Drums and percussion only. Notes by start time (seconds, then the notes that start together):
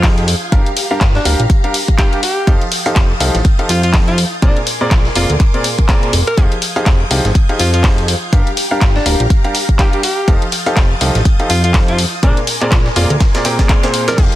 0.03 kick, snare, clap, closed hi-hat, open hi-hat
0.18 closed hi-hat
0.28 closed hi-hat, open hi-hat
0.52 kick, closed hi-hat
0.66 closed hi-hat
0.77 closed hi-hat, open hi-hat
1.01 kick, snare, clap, closed hi-hat
1.15 snare
1.25 closed hi-hat, open hi-hat
1.40 closed hi-hat
1.50 kick, closed hi-hat
1.64 closed hi-hat
1.74 closed hi-hat, open hi-hat
1.88 kick, closed hi-hat
1.98 kick, snare, clap, closed hi-hat
2.13 closed hi-hat
2.23 closed hi-hat, open hi-hat
2.47 kick, closed hi-hat
2.61 closed hi-hat
2.72 closed hi-hat, open hi-hat
2.86 closed hi-hat
2.96 kick, snare, clap, closed hi-hat
3.20 closed hi-hat, open hi-hat
3.35 snare, closed hi-hat
3.45 kick, closed hi-hat
3.59 closed hi-hat
3.69 closed hi-hat, open hi-hat
3.83 closed hi-hat
3.93 kick, snare, clap, closed hi-hat, open hi-hat
4.08 closed hi-hat
4.18 closed hi-hat, open hi-hat
4.42 kick, closed hi-hat
4.57 closed hi-hat
4.67 closed hi-hat, open hi-hat
4.91 kick, snare, clap, closed hi-hat
5.05 snare
5.16 closed hi-hat, open hi-hat
5.30 closed hi-hat
5.40 kick, clap, closed hi-hat
5.54 closed hi-hat
5.64 closed hi-hat, open hi-hat
5.79 kick, closed hi-hat
5.89 kick, snare, clap, closed hi-hat
6.03 closed hi-hat
6.13 closed hi-hat, open hi-hat
6.27 closed hi-hat
6.38 kick, closed hi-hat
6.52 closed hi-hat
6.62 closed hi-hat, open hi-hat
6.76 closed hi-hat
6.86 kick, snare, clap, closed hi-hat
7.11 closed hi-hat, open hi-hat
7.25 snare, closed hi-hat
7.35 kick, closed hi-hat
7.49 closed hi-hat
7.59 closed hi-hat, open hi-hat
7.74 closed hi-hat
7.84 kick, snare, clap, closed hi-hat, open hi-hat
7.98 closed hi-hat
8.08 closed hi-hat, open hi-hat
8.33 kick, closed hi-hat
8.47 closed hi-hat
8.57 closed hi-hat, open hi-hat
8.81 kick, snare, clap, closed hi-hat
8.96 snare
9.06 closed hi-hat, open hi-hat
9.20 closed hi-hat
9.30 kick, closed hi-hat
9.45 closed hi-hat
9.55 closed hi-hat, open hi-hat
9.69 kick, closed hi-hat
9.79 kick, snare, clap, closed hi-hat
9.93 closed hi-hat
10.03 closed hi-hat, open hi-hat
10.28 kick, closed hi-hat
10.42 closed hi-hat
10.52 closed hi-hat, open hi-hat
10.66 closed hi-hat
10.77 kick, snare, clap, closed hi-hat
11.01 closed hi-hat, open hi-hat
11.15 snare, closed hi-hat
11.25 kick, closed hi-hat
11.40 closed hi-hat
11.50 closed hi-hat, open hi-hat
11.64 closed hi-hat
11.74 kick, snare, clap, closed hi-hat, open hi-hat
11.88 closed hi-hat
11.98 closed hi-hat, open hi-hat
12.23 kick, closed hi-hat
12.37 closed hi-hat
12.47 closed hi-hat, open hi-hat
12.61 clap, closed hi-hat
12.72 kick, snare, clap, closed hi-hat
12.86 snare
12.96 closed hi-hat, open hi-hat
13.10 closed hi-hat
13.20 kick, snare, clap, closed hi-hat
13.35 snare, closed hi-hat
13.45 snare, closed hi-hat, open hi-hat
13.59 kick, snare, closed hi-hat
13.69 kick, snare, clap, closed hi-hat
13.83 snare, closed hi-hat
13.94 closed hi-hat, open hi-hat
14.08 snare, closed hi-hat
14.18 kick, closed hi-hat, crash
14.32 closed hi-hat